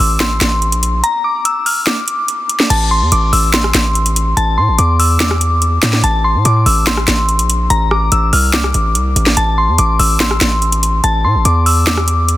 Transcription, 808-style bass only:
0.00 0.39 A1 loud
0.41 0.74 A1 loud
0.72 1.02 A#1 loud
2.70 3.03 A1 loud
3.01 3.11 E2 loud
3.12 3.32 A1 loud
3.33 3.73 A1 loud
3.74 4.34 A1 loud
4.37 4.59 A1 loud
4.58 4.70 A2 loud
4.68 4.78 A1 loud
4.79 5.79 E2 loud
5.83 6.03 A2 loud
6.04 6.36 A1 loud
6.35 6.45 A2 loud
6.45 6.65 A2 loud
6.66 7.06 A1 loud
7.08 7.40 A1 loud
7.39 7.69 A#1 loud
7.70 8.10 A1 loud
8.12 8.32 A1 loud
8.33 8.73 C2 loud
8.74 8.97 A1 loud
8.95 9.15 C2 loud
9.16 9.36 A1 loud
9.37 9.70 A1 loud
9.68 9.78 E2 loud
9.79 9.99 A1 loud
9.99 10.39 A1 loud
10.41 11.01 A1 loud
11.04 11.26 A1 loud
11.24 11.36 A2 loud
11.35 11.45 A1 loud
11.45 12.37 E2 loud

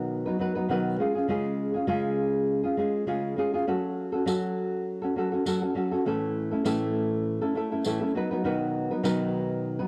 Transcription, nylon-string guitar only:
0.00 0.25 B2 medium
0.00 0.25 D#3 medium
0.00 0.26 F#3 medium
0.00 0.26 B3 medium
0.00 0.26 D#4 medium
0.00 0.24 B4 medium
0.26 0.38 F#3 soft
0.26 0.39 B3 soft
0.26 0.39 D#4 medium
0.26 0.39 B4 medium
0.39 0.56 F#3 medium
0.39 0.56 B3 medium
0.39 0.55 D#4 medium
0.39 0.54 B4 medium
0.55 0.69 F#3 soft
0.55 0.69 B3 soft
0.55 0.69 D#4 soft
0.55 0.69 B4 medium
0.69 0.99 B2 medium
0.69 0.99 D#3 medium
0.69 0.98 F#3 medium
0.69 0.99 B3 medium
0.69 1.00 D#4 medium
0.69 1.00 B4 medium
0.98 1.15 G#3 medium
0.98 1.16 C#4 medium
0.98 1.15 F4 medium
0.98 1.14 G#4 medium
1.15 1.28 C#4 soft
1.15 1.29 F4 soft
1.15 1.28 G#4 medium
1.28 1.75 C#3 medium
1.28 1.75 G#3 medium
1.28 1.75 C#4 medium
1.28 1.75 F4 medium
1.28 1.73 G#4 medium
1.74 1.87 C#4 soft
1.74 1.87 F4 soft
1.74 1.87 G#4 soft
1.87 2.64 C#3 medium
1.87 2.64 G#3 medium
1.87 2.65 C#4 medium
1.87 2.64 F4 medium
1.87 2.62 G#4 medium
2.63 2.77 C#4 soft
2.63 2.78 F4 soft
2.63 2.77 G#4 medium
2.77 3.06 G#3 medium
2.77 3.06 C#4 medium
2.77 3.07 F4 medium
2.77 3.07 G#4 medium
3.07 3.37 C#3 medium
3.07 3.35 G#3 medium
3.07 3.37 C#4 medium
3.07 3.37 F4 medium
3.07 3.38 G#4 medium
3.37 3.53 G#3 medium
3.37 3.54 C#4 medium
3.37 3.54 F4 medium
3.37 3.53 G#4 medium
3.54 3.66 C#4 soft
3.54 3.68 F4 medium
3.54 3.67 G#4 medium
3.67 4.13 F#3 medium
3.67 4.14 C#4 medium
3.67 4.12 F#4 medium
3.67 4.11 A4 medium
4.12 4.25 C#4 soft
4.12 4.26 F#4 soft
4.12 4.26 A4 soft
4.26 5.02 F#3 medium
4.26 5.04 C#4 medium
4.26 5.02 F#4 medium
4.26 5.01 A4 medium
5.01 5.15 C#4 soft
5.01 5.16 F#4 soft
5.01 5.16 A4 medium
5.15 5.32 F#3 medium
5.15 5.33 C#4 medium
5.15 5.32 F#4 medium
5.15 5.30 A4 medium
5.32 5.45 C#4 soft
5.32 5.45 F#4 soft
5.32 5.45 A4 soft
5.46 5.62 F#3 medium
5.46 5.62 C#4 medium
5.46 5.62 F#4 medium
5.46 5.61 A4 medium
5.62 5.74 C#4 soft
5.62 5.75 F#4 soft
5.62 5.75 A4 soft
5.75 5.92 F#3 medium
5.75 5.92 C#4 medium
5.75 5.92 F#4 medium
5.75 5.90 A4 medium
5.91 6.05 C#4 soft
5.91 6.06 F#4 medium
5.91 6.05 A4 medium
6.05 6.52 A2 medium
6.05 6.52 E3 medium
6.05 6.52 A3 medium
6.05 6.52 C#4 medium
6.05 6.51 E4 medium
6.05 6.50 A4 medium
6.51 6.64 A3 soft
6.51 6.64 C#4 soft
6.51 6.65 E4 medium
6.51 6.65 A4 soft
6.64 7.41 A2 medium
6.64 7.41 E3 medium
6.64 7.41 A3 medium
6.64 7.41 C#4 medium
6.64 7.41 E4 medium
6.64 7.40 A4 medium
7.41 7.53 A3 soft
7.41 7.54 C#4 soft
7.41 7.55 E4 soft
7.41 7.55 A4 medium
7.55 7.71 A3 medium
7.55 7.71 C#4 medium
7.55 7.71 E4 medium
7.55 7.70 A4 medium
7.72 7.85 A3 soft
7.72 7.85 C#4 soft
7.72 7.85 E4 soft
7.72 7.85 A4 soft
7.85 8.01 A2 medium
7.85 8.01 E3 medium
7.85 8.01 A3 medium
7.85 8.02 C#4 medium
7.85 8.01 E4 medium
7.85 8.00 A4 medium
8.01 8.14 A3 soft
8.01 8.15 C#4 soft
8.01 8.15 E4 soft
8.01 8.14 A4 medium
8.15 8.31 F#3 medium
8.15 8.31 B3 medium
8.15 8.31 D#4 medium
8.15 8.30 B4 medium
8.31 8.44 F#3 soft
8.31 8.44 B3 medium
8.31 8.44 D#4 medium
8.31 8.44 B4 medium
8.44 8.90 B2 medium
8.44 8.90 D#3 medium
8.44 8.90 F#3 medium
8.44 8.91 B3 medium
8.44 8.90 D#4 medium
8.44 8.90 B4 medium
8.91 9.03 F#3 soft
8.91 9.03 B3 medium
8.91 9.03 D#4 medium
8.91 9.04 B4 medium
9.03 9.79 B2 medium
9.03 9.79 D#3 medium
9.03 9.79 F#3 medium
9.03 9.80 B3 medium
9.03 9.79 D#4 medium
9.03 9.78 B4 loud
9.79 9.88 F#3 soft
9.79 9.88 B3 soft
9.79 9.88 D#4 medium
9.79 9.88 B4 medium

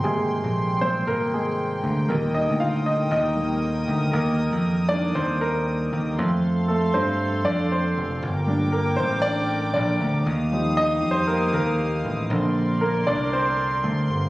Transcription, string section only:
0.00 2.05 G#3 medium
0.00 6.15 G5 medium
0.00 2.05 C6 medium
2.08 6.14 A#4 medium
2.08 6.14 D#6 medium
6.18 8.21 A4 medium
6.18 8.20 F5 medium
6.18 8.20 C6 medium
8.22 10.25 A#4 medium
8.22 10.25 G5 medium
8.22 10.25 D6 medium
10.26 12.29 G4 medium
10.26 12.29 F5 medium
10.26 12.29 D#6 medium
12.30 14.29 A#4 medium
12.30 14.29 D5 medium
12.30 14.29 C6 medium

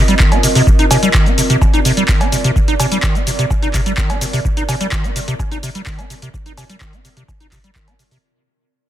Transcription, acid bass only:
0.08 0.15 G3 loud
0.20 0.33 D#3 loud
0.32 0.38 C4 medium
0.43 0.47 C3 medium
0.55 0.62 C3 loud
0.67 0.71 C3 medium
0.79 0.85 D#4 loud
0.91 0.97 C3 loud
1.03 1.09 G3 loud
1.14 1.28 D#3 loud
1.26 1.33 C4 medium
1.38 1.42 C3 medium
1.50 1.56 C3 loud
1.62 1.66 C3 medium
1.74 1.80 D#4 loud
1.85 1.92 C3 loud
1.97 2.04 G3 loud
2.09 2.22 D#3 loud
2.21 2.27 C4 medium
2.32 2.36 C3 medium
2.44 2.51 C3 loud
2.56 2.60 C3 medium
2.68 2.74 D#4 loud
2.80 2.86 C3 loud
2.92 2.98 G3 loud
3.03 3.17 D#3 loud
3.15 3.22 C4 medium
3.27 3.31 C3 medium
3.39 3.45 C3 loud
3.51 3.54 C3 medium
3.62 3.69 D#4 loud
3.74 3.81 C3 loud
3.86 3.93 G3 loud
3.98 4.11 D#3 loud
4.10 4.16 C4 medium
4.21 4.25 C3 medium
4.33 4.40 C3 loud
4.45 4.49 C3 medium
4.57 4.63 D#4 loud
4.69 4.75 C3 loud
4.81 4.87 G3 loud
4.92 5.06 D#3 loud
5.04 5.11 C4 medium
5.16 5.20 C3 medium
5.28 5.34 C3 loud
5.40 5.43 C3 medium
5.51 5.58 D#4 loud
5.63 5.70 C3 loud
5.75 5.82 G3 loud
5.87 6.00 D#3 loud
5.99 6.05 C4 medium
6.10 6.14 C3 medium
6.22 6.29 C3 loud
6.34 6.38 C3 medium
6.46 6.52 D#4 loud
6.58 6.64 C3 loud
6.70 6.76 G3 loud
6.81 6.95 D#3 loud
6.93 7.00 C4 medium
7.05 7.09 C3 medium
7.17 7.23 C3 loud
7.29 7.32 C3 medium
7.40 7.47 D#4 loud
7.52 7.59 C3 loud
7.64 7.70 G3 loud
7.76 7.89 D#3 loud
7.88 7.94 C4 medium
7.99 8.03 C3 medium
8.11 8.18 C3 loud

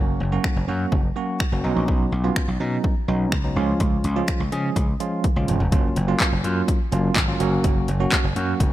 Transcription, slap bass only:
0.00 0.13 F#1 loud
0.20 0.37 F#1 loud
0.56 0.65 F#1 medium
0.68 0.85 F#2 medium
0.92 1.09 F#1 medium
1.52 1.61 F#1 medium
1.64 1.73 B1 loud
1.76 1.85 A#1 medium
1.88 2.05 B1 loud
2.12 2.29 B1 loud
2.48 2.56 B1 medium
2.60 2.77 B2 medium
3.08 3.25 B1 medium
3.32 3.49 C#2 medium
3.56 3.73 C#2 medium
3.80 3.97 C#2 loud
4.04 4.21 C#2 loud
4.40 4.48 C#2 medium
4.52 4.69 C#3 loud
4.76 4.93 C#2 medium
5.36 5.45 C#2 medium
5.48 5.57 E1 loud
5.60 5.69 F1 medium
5.72 5.89 F#1 loud
5.96 6.13 F#1 loud
6.32 6.41 F#1 medium
6.44 6.61 F#2 loud
6.92 7.09 F#1 medium
7.16 7.33 G#1 medium
7.40 7.57 F#1 loud
7.64 7.81 F#1 loud
7.88 8.05 F#1 loud
8.24 8.33 F#1 medium
8.36 8.53 F#2 loud
8.60 8.73 F#1 medium

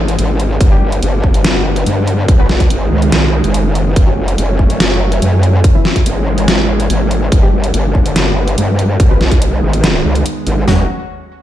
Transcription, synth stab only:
0.71 0.83 G3 medium
0.71 0.83 D4 medium
0.71 0.83 G4 medium
2.39 2.51 B3 medium
2.39 2.51 F#4 medium
2.39 2.51 B4 medium
4.07 4.19 F#3 medium
4.07 4.19 C#4 medium
4.07 4.19 F#4 medium
5.75 5.87 E3 medium
5.75 5.87 B3 medium
5.75 5.87 E4 medium
7.43 7.55 G3 medium
7.43 7.55 D4 medium
7.43 7.55 G4 medium
9.11 9.23 B3 medium
9.11 9.23 F#4 medium
9.11 9.23 B4 medium
10.68 10.83 F#3 medium
10.68 10.83 C#4 medium
10.68 10.83 F#4 loud

